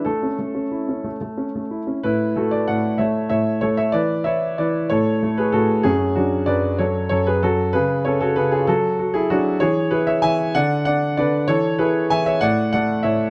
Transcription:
<<
  \new Staff \with { instrumentName = "Grand piano" } { \time 6/8 \key a \major \tempo 4. = 63 a'4. r4. | <e' b'>8 <fis' a'>16 <b' d''>16 <d'' fis''>8 <cis'' e''>8 <cis'' e''>8 <a' cis''>16 <cis'' e''>16 | <b' d''>8 <cis'' e''>8 <b' d''>8 <a' cis''>8. <gis' b'>16 <fis' a'>8 | <cis' gis'>8 <d' fis'>8 <b' d''>8 <a' cis''>8 <a' cis''>16 <gis' b'>16 <fis' a'>8 |
<gis' b'>8 <a' cis''>16 <fis' a'>16 <gis' b'>16 <eis' gis'>16 <fis' a'>8. <e' gis'>16 <d' fis'>8 | <gis' cis''>8 <gis' b'>16 <cis'' e''>16 <e'' gis''>8 <d'' fis''>8 <d'' fis''>8 <b' d''>8 | <a' cis''>8 <gis' b'>8 <e'' gis''>16 <cis'' e''>16 <d'' fis''>8 <d'' fis''>8 <cis'' e''>8 | }
  \new Staff \with { instrumentName = "Grand piano" } { \clef bass \time 6/8 \key a \major a16 cis'16 a16 cis'16 e'16 cis'16 a16 a16 cis'16 a16 e'16 cis'16 | a,8 a8 a,8 a8 a,8 a8 | e8 e'8 e8 a,8 a8 a,8 | fis,8 fis8 fis,8 fis8 fis,8 fis8 |
cis8 cis'8 cis8 fis8 fis'8 fis8 | e8 e'8 e8 d8 d'8 d8 | e8 e'8 e8 a,8 a8 a,8 | }
>>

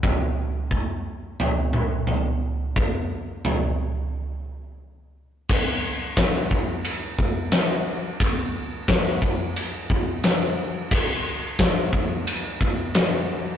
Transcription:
\new DrumStaff \with { instrumentName = "Drums" } \drummode { \time 4/4 \tempo 4 = 88 <bd tomfh>4 bd4 tomfh8 toml8 tomfh4 | bd4 tomfh4 r4 r4 | <cymc bd>4 <bd rb sn>8 bd8 rb8 bd8 <rb sn>4 | <bd rb>4 <bd rb sn>16 sn16 bd8 rb8 bd8 <rb sn>4 |
<cymc bd>4 <bd rb sn>8 bd8 rb8 bd8 <rb sn>4 | }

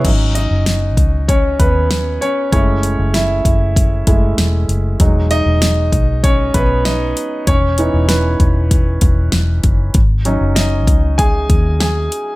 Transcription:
<<
  \new Staff \with { instrumentName = "Grand piano" } { \time 4/4 \key gis \phrygian \tempo 4 = 97 r8 <dis' dis''>4. <cis' cis''>8 <b b'>4 <cis' cis''>8 | <cis' cis''>4 <e' e''>2 r4 | r8 <dis' dis''>4. <cis' cis''>8 <b b'>8 <dis' dis''>4 | <cis' cis''>4 <b b'>4. r4. |
r4 <dis' dis''>4 <gis' gis''>4 <gis' gis''>4 | }
  \new Staff \with { instrumentName = "Grand piano" } { \time 4/4 \key gis \phrygian <fis cis' dis'>4. r2 r8 | <gis a e'>2~ <gis a e'>8 <gis a e'>8 r4 | <fis gis dis'>4. r2 r8 | r8 <e b dis'>4. r2 |
r8 <fis cis' dis'>8 r2. | }
  \new Staff \with { instrumentName = "Fingered electric bass" } { \clef bass \time 4/4 \key gis \phrygian gis,,8. fis,,8. cis,4 dis,4 r8 | fis,,8. fis,,8. fis,,4 fis,,8 e,,8 fis,,8 | e,,8. e,,8. b,,4 b,,4 r8 | e,,8. e,,8. e,,4 e,,8 e,,8 fis,,8 |
gis,,8. fis,,8. cis,4 dis,4 r8 | }
  \new DrumStaff \with { instrumentName = "Drums" } \drummode { \time 4/4 <cymc hh bd>8 hh8 <hh sn>8 <hh bd>8 <hh bd>8 <hh bd>8 <hh sn>8 hh8 | <hh bd>8 hh8 <hh sn>8 <hh bd>8 <hh bd>8 <hh bd>8 <hh sn>8 hh8 | <hh bd>8 hh8 <hh sn>8 <hh bd>8 <hh bd>8 <hh bd>8 <hh sn>8 hh8 | <hh bd>8 hh8 <hh sn>8 <hh bd>8 <hh bd>8 <hh bd>8 <hh sn>8 <hh bd>8 |
<hh bd>8 hh8 <hh sn>8 <hh bd>8 <hh bd>8 <hh bd>8 <hh sn>8 hh8 | }
>>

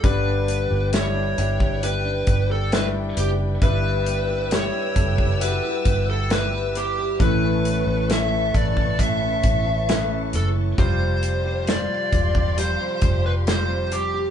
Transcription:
<<
  \new Staff \with { instrumentName = "String section" } { \time 4/4 \key a \mixolydian \tempo 4 = 67 << { g''1 | <g'' e'''>1 | <a'' cis'''>1 | <f'' c'''>1 | } \\ { b'1~ | b'1~ | b'1 | g'1 | } >> }
  \new Staff \with { instrumentName = "Lead electric guitar" } { \time 4/4 \key a \mixolydian b'4 cis''4 b'8. a'16 b'8 g'8 | b'4 cis''4 b'8. a'16 b'8 g'8 | b'4 e''8 d''8 e''4. a'8 | c''4 d''4 c''8. b'16 c''8 g'8 | }
  \new Staff \with { instrumentName = "Grand piano" } { \time 4/4 \key a \mixolydian <g d' b'>4 <g d' e'>8 <g d' e'>8 <g d' g'>4 <g d' e'>4 | <g e' b'>4 <g e' g'>8 <g e' a'>8 <g e' fis' g'>4 <g e' b'>4 | <a cis' b'>4 <a cis' cis''>8 <cis a b'>8 <a cis' b'>4 <a cis' b'>4 | <g f' c''>4 <g f' c''>8 <g f' d''>8 <g f' c''>4 <g f' c''>4 | }
  \new Staff \with { instrumentName = "Grand piano" } { \clef bass \time 4/4 \key a \mixolydian <g, d>4. r2 r8 | g,4. r2 r8 | <a, e>4. r2 r8 | c4. r2 r8 | }
  \new Staff \with { instrumentName = "Nylon-string guitar" } { \time 4/4 \key a \mixolydian <g, g'>16 d'16 b16 g'16 g16 d'16 b16 g'16 g'16 d'16 b16 g'16 g16 d'16 b16 g'16 | <g g'>16 e'16 b16 g'16 b16 e'16 b16 g'16 <g g'>16 e'16 b16 g'8 e'16 b16 g'16 | <a, e'>16 cis'16 b16 e'16 e8 b16 e'16 <a, e'>16 cis'16 b16 e'16 e16 cis'16 b16 e'16 | <f g'>16 c'16 g16 g'16 g16 c'16 g16 g'16 <f g'>16 c'16 g16 g'16 g16 c'16 g16 g'16 | }
  \new Staff \with { instrumentName = "Fingered electric bass" } { \clef bass \time 4/4 \key a \mixolydian g,,8. g,,8. g,,4 g,,4 fis,,8 | g,,4~ g,,16 r16 fis,,8. r16 g,,4. | a,,8. a,,8. a,,4 a,,4 fis,,8 | f,,4~ f,,16 r16 e,,8. r16 f,,4. | }
  \new DrumStaff \with { instrumentName = "Drums" } \drummode { \time 4/4 <hh bd>8 hh8 <hh sn>8 hh16 bd16 hh8 <hh bd>8 <hh sn>8 hh8 | <hh bd>8 hh8 <hh sn>8 <hh bd>16 bd16 hh8 <hh bd>8 <hh sn>8 hh8 | <hh bd>8 hh8 <hh sn>8 <hh bd>16 bd16 <hh bd>8 <hh bd>8 <hh sn>8 hh8 | <hh bd>8 hh8 <hh sn>8 <hh bd>16 bd16 hh8 <hh bd>8 <hh sn>8 hh8 | }
>>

